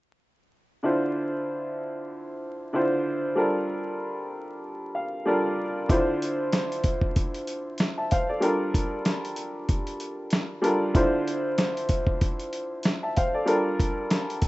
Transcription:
0.83 D3 D4 E4 F4 C5
2.73 D3 D4 E4 F4 C5
3.35 G3 D4 F4 A4 A#4
4.95 F5
5.25 G3 D4 F4 A4 A#4 D5
5.88 D3 D4 E4 F4 C5, kick, closed hi-hat
6.22 closed hi-hat
6.53 snare, closed hi-hat
6.72 closed hi-hat
6.84 kick, closed hi-hat
7.01 kick
7.16 kick, closed hi-hat
7.34 closed hi-hat
7.47 closed hi-hat
7.78 snare, closed hi-hat
7.98 E5 A5
8.11 C5 F5, kick, closed hi-hat
8.29 A4 D5
8.40 G3 D4 F4 A4 A#4, closed hi-hat
8.74 kick, closed hi-hat
9.05 snare, closed hi-hat
9.25 closed hi-hat
9.36 closed hi-hat
9.69 kick, closed hi-hat
9.87 closed hi-hat
10.00 closed hi-hat
10.30 snare, closed hi-hat
10.62 G3 D4 F4 A4 A#4, closed hi-hat
10.94 D3 D4 E4 F4 C5, kick, closed hi-hat
11.28 closed hi-hat
11.58 snare, closed hi-hat
11.77 closed hi-hat
11.89 kick, closed hi-hat
12.07 kick
12.21 kick, closed hi-hat
12.39 closed hi-hat
12.53 closed hi-hat
12.83 snare, closed hi-hat
13.03 E5 A5
13.16 C5 F5, kick, closed hi-hat
13.34 A4 D5
13.46 G3 D4 F4 A4 A#4, closed hi-hat
13.80 kick, closed hi-hat
14.10 snare, closed hi-hat
14.30 closed hi-hat
14.42 kick, closed hi-hat

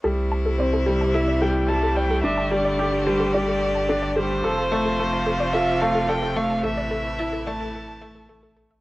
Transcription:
0.03 C2 C3 G3 A3 E4 A4
0.32 A5
0.46 A4
0.58 C4 D5
0.74 A4
0.86 G3
1.01 A5
1.13 E4 A4 E5
1.28 D5
1.41 G3 A4 G5
1.68 G3 A5
1.83 A4
1.96 D5 G5
2.11 A4
2.23 G1 D3 D4 G4 E5
2.38 A5
2.51 G3 A4 D5
2.65 D5
2.79 G4 A4
3.06 G3 C5 A5
3.20 A4
3.32 G3 D5
3.48 A4
3.75 A5
3.89 D4 A4
4.03 D5
4.15 G3 A4 C5
4.44 F1 C3 F3 F4 A4 A5
4.58 A4
4.72 A3 D5
4.85 A4
4.99 A3
5.13 A5
5.26 A4
5.40 D5
5.53 F4 A4 E5
5.81 A3 F5 A5
5.95 A4
6.08 A4 D5 G5
6.23 A4
6.36 A3 F5
6.50 A5
6.64 A1 E3 A3 E4 A4 E5
6.78 D5
6.91 A4
7.19 E4 A5
7.33 A4
7.47 A3 D5 A5
7.60 A4
7.75 A4
7.88 A5
8.02 A3 A4
8.15 A4
8.29 A3 A4
8.43 A4
8.57 A4
8.71 E5

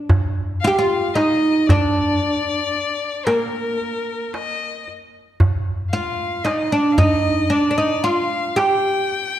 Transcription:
0.09 darbuka dum
0.61 F4 F5
0.67 G4
0.74 F5
0.79 F4
1.14 D#4 D#5, darbuka tek
1.66 D4 D5, darbuka dum
2.23 darbuka ka
2.75 darbuka ka
3.25 A#3 A#4, darbuka tek
3.81 darbuka ka
4.33 D#5, darbuka tek
4.88 darbuka ka
5.40 darbuka dum
5.91 F4 F5, darbuka ka
6.44 D#4 D#5, darbuka tek
6.50 D5
6.58 D#5
6.72 D4 D5
6.92 F5
6.98 D#4 D#5, darbuka dum
7.50 D4 D5
7.71 D4
7.78 D#4
8.04 F4 F5, darbuka ka
8.56 G4 G5, darbuka tek
9.11 darbuka ka

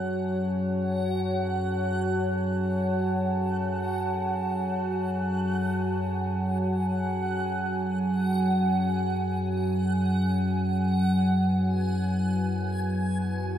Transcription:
Already playing: F#2 F#3 F#4 C#5 F#5 G#5 A5
10.78 F#3 G#5
11.21 B4
11.63 E4
11.84 F#5

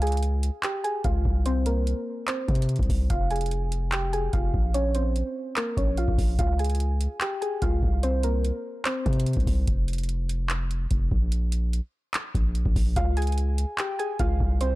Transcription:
Already playing: C#2
0.02 G#4 G#5, closed hi-hat
0.07 closed hi-hat
0.12 closed hi-hat
0.17 closed hi-hat
0.23 closed hi-hat
0.43 closed hi-hat
0.63 G4 G5, clap, closed hi-hat
0.84 G#4 G#5, closed hi-hat
1.04 C#2 F4 F5, kick, closed hi-hat
1.25 C2, kick
1.46 C4 C5, closed hi-hat
1.66 A#3 A#4, closed hi-hat
1.87 closed hi-hat
2.28 C4 C5, clap, closed hi-hat
2.48 C3, kick, closed hi-hat
2.55 closed hi-hat
2.62 closed hi-hat
2.69 closed hi-hat
2.76 C2, kick, closed hi-hat
2.83 closed hi-hat
2.89 C2, kick, open hi-hat
3.10 F1 F4 F5, kick, closed hi-hat
3.31 G#4 G#5, closed hi-hat
3.36 closed hi-hat
3.41 closed hi-hat
3.46 closed hi-hat
3.51 closed hi-hat
3.72 closed hi-hat
3.92 G4 G5, clap, closed hi-hat
4.13 G#4 G#5, closed hi-hat
4.33 F1 F4 F5, kick, closed hi-hat
4.54 A#1, kick
4.74 C#4 C#5, closed hi-hat
4.95 C4 C5, closed hi-hat
5.16 closed hi-hat
5.57 A#3 A#4, clap, closed hi-hat
5.77 A#1 C#4 C#5, kick, closed hi-hat
5.97 F4 F5, closed hi-hat
6.08 A#1, kick
6.18 A#1, kick, open hi-hat
6.39 C#2 F4 F5, kick, closed hi-hat
6.59 G#4 G#5, closed hi-hat
6.64 closed hi-hat
6.70 closed hi-hat
6.75 closed hi-hat
6.80 closed hi-hat
7.01 closed hi-hat
7.21 G4 G5, clap, closed hi-hat
7.41 G#4 G#5, closed hi-hat
7.62 C#2 F4 F5, kick, closed hi-hat
7.83 C2, kick
8.03 C4 C5, closed hi-hat
8.23 A#3 A#4, closed hi-hat
8.45 closed hi-hat
8.85 C4 C5, clap, closed hi-hat
9.06 C3, kick, closed hi-hat
9.13 closed hi-hat
9.20 closed hi-hat
9.26 closed hi-hat
9.33 C2, kick, closed hi-hat
9.40 closed hi-hat
9.47 C2, kick, open hi-hat
9.67 F1, kick, closed hi-hat
9.88 closed hi-hat
9.93 closed hi-hat
9.98 closed hi-hat
10.04 closed hi-hat
10.09 closed hi-hat
10.29 closed hi-hat
10.50 clap, closed hi-hat
10.71 closed hi-hat
10.91 F1, kick, closed hi-hat
11.11 A#1, kick
11.32 closed hi-hat
11.52 closed hi-hat
11.73 closed hi-hat
12.14 clap, closed hi-hat
12.35 A#1, kick, closed hi-hat
12.55 closed hi-hat
12.65 A#1, kick
12.76 A#1, kick, open hi-hat
12.96 C#2 F4 F5, kick, closed hi-hat
13.17 G#4 G#5, closed hi-hat
13.22 closed hi-hat
13.27 closed hi-hat
13.32 closed hi-hat
13.38 closed hi-hat
13.58 closed hi-hat
13.78 G4 G5, clap, closed hi-hat
13.99 G#4 G#5, closed hi-hat
14.19 C#2 F4 F5, kick, closed hi-hat
14.40 C2, kick
14.61 C4 C5, closed hi-hat

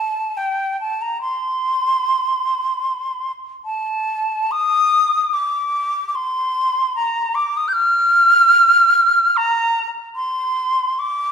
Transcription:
Already playing: A5
0.37 G5
0.81 A5
1.02 A#5
1.21 C6
3.65 A5
4.51 D#6
5.33 D6
6.08 D6
6.15 C6
6.96 A#5
7.35 D6
7.57 D#6
7.68 G6
7.73 F6
9.37 A#5
10.16 C6
10.99 D6

